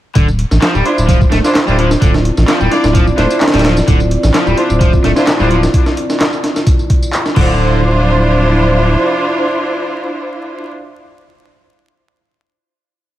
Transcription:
0.15 sub bass D1, overdriven electric guitar D3, analog synth pad C4 E4 F4 D5, kick, closed hi-hat, tambourine
0.28 tambourine
0.39 closed hi-hat
0.51 sub bass A1, snare, tambourine
0.62 overdriven electric guitar F3, snare, clap, closed hi-hat, tambourine
0.74 sub bass D1, overdriven electric guitar G3, tambourine
0.85 string section D4 E4 F4 C5, closed hi-hat
0.98 sub bass D1, tambourine
1.08 overdriven electric guitar F3, kick, closed hi-hat, tambourine
1.21 kick, tambourine
1.32 sub bass D1, overdriven electric guitar A3, snare, closed hi-hat
1.44 string section D4 E4 F4 C5, snare, tambourine
1.55 snare, clap, closed hi-hat, tambourine
1.67 sub bass D1, overdriven electric guitar G3, string section D4 E4 F4 C5, tambourine
1.78 overdriven electric guitar F3, closed hi-hat
1.91 snare, tambourine
2.01 sub bass D1, overdriven electric guitar D3, kick, closed hi-hat, tambourine
2.14 snare, tambourine
2.25 closed hi-hat
2.37 sub bass A1, snare, tambourine
2.48 overdriven electric guitar F3, snare, clap, closed hi-hat, tambourine
2.61 sub bass D1, overdriven electric guitar G3, tambourine
2.71 string section D4 E4 F4 D5, snare, closed hi-hat
2.84 sub bass D1, snare, tambourine
2.94 overdriven electric guitar F3, kick, closed hi-hat, tambourine
3.07 tambourine
3.18 sub bass D1, overdriven electric guitar A3, string section D4 E4 F4 C5, snare, closed hi-hat
3.30 closed hi-hat, tambourine
3.41 snare, clap, closed hi-hat, tambourine
3.48 snare, closed hi-hat
3.53 sub bass D1, overdriven electric guitar G3, snare, closed hi-hat, tambourine
3.59 snare, closed hi-hat
3.64 overdriven electric guitar F3, snare, closed hi-hat
3.77 snare, tambourine
3.87 sub bass D1, overdriven electric guitar D3, kick, closed hi-hat, tambourine
4.00 tambourine
4.11 closed hi-hat
4.23 sub bass A1, snare, tambourine
4.34 overdriven electric guitar F3, snare, clap, closed hi-hat, tambourine
4.47 sub bass D1, overdriven electric guitar G3, tambourine
4.57 string section D4 E4 F4 C5, closed hi-hat
4.70 sub bass D1, tambourine
4.81 overdriven electric guitar F3, kick, closed hi-hat, tambourine
4.93 kick, tambourine
5.04 sub bass D1, overdriven electric guitar A3, snare, closed hi-hat
5.16 string section D4 E4 F4 C5, snare, tambourine
5.27 snare, clap, closed hi-hat, tambourine
5.40 sub bass D1, overdriven electric guitar G3, string section D4 E4 F4 C5, tambourine
5.50 overdriven electric guitar F3, closed hi-hat
5.63 snare, tambourine
5.74 kick, closed hi-hat, tambourine
5.86 snare, tambourine
5.97 closed hi-hat
6.10 snare, tambourine
6.20 snare, clap, closed hi-hat, tambourine
6.33 tambourine
6.44 snare, closed hi-hat
6.56 snare, tambourine
6.67 kick, closed hi-hat, tambourine
6.79 tambourine
6.90 kick, closed hi-hat
7.02 tambourine
7.13 clap, closed hi-hat, tambourine
7.25 snare, tambourine
7.36 sub bass D1, overdriven electric guitar D3, analog synth pad F3 C4 D5 E5, string section D4 E4 F4 C5, kick, crash

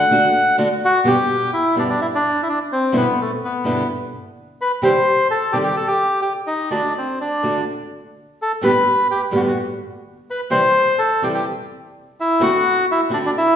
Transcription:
Already playing: bandoneon F#5
0.11 nylon-string guitar D3 A3 D4 F#4
0.58 nylon-string guitar D3 A3 D4 F#4
0.85 bandoneon F#4
1.04 nylon-string guitar G2 B2 D3 G3 B3 G4, bandoneon G4
1.53 bandoneon E4
1.76 nylon-string guitar G2 B2 D3 G3 B3 G4, bandoneon D4
1.90 bandoneon D4
2.01 bandoneon E4
2.15 bandoneon D4
2.43 bandoneon E4
2.49 bandoneon D4
2.72 bandoneon C4
2.92 nylon-string guitar G2 B2 D3 G3 B3 E4
2.97 bandoneon B3
3.21 bandoneon A3
3.45 bandoneon B3
3.64 nylon-string guitar G2 B2 D3 G3 B3 E4
4.61 bandoneon B4
4.82 nylon-string guitar C3 D#3 G3 C4 G4, bandoneon C5
5.31 bandoneon A4
5.52 nylon-string guitar C3 D#3 G3 C4 G4, bandoneon G4
5.64 bandoneon G4
5.77 bandoneon A4
5.87 bandoneon G4
6.22 bandoneon G4
6.47 bandoneon D#4
6.71 nylon-string guitar D3 A3 D4 F#4, bandoneon D4
6.98 bandoneon C4
7.21 bandoneon D4
7.43 nylon-string guitar D3 A3 D4 F#4
8.42 bandoneon A4
8.61 nylon-string guitar G2 A2 D3 G3 B3 G4, bandoneon B4
9.11 bandoneon G4
9.31 nylon-string guitar G2 A2 D3 G3 B3 G4
9.36 bandoneon F#4
9.48 bandoneon F#4
10.30 bandoneon B4
10.50 nylon-string guitar C3 E3 G3 C4 E4, bandoneon C5
10.99 bandoneon A4
11.22 nylon-string guitar C3 E3 G3 C4 E4, bandoneon G4
11.35 bandoneon G4
12.20 bandoneon E4
12.40 nylon-string guitar D3 A3 C4 F#4, bandoneon F#4
12.91 bandoneon E4
13.09 nylon-string guitar D3 A3 C4 F#4
13.13 bandoneon D4
13.26 bandoneon D4
13.38 bandoneon E4

